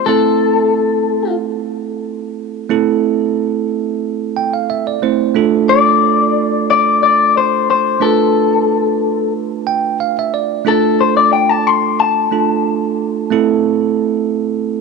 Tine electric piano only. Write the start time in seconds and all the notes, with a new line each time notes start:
0.07 A3 C4 E4 A4
2.69 A3 C4 E4 A4
4.37 G5
4.53 F5
4.70 E5
4.87 D5
5.02 A3 C4 E4 C5
5.35 A3 D4 F4 A4
8.00 A3 D4 F4 B4
9.67 G5
10.00 F5
10.19 E5
10.34 D5
10.65 A3 D4 F4 A4
12.31 A3 D4 F4 A4
13.31 A3 C4 E4 A4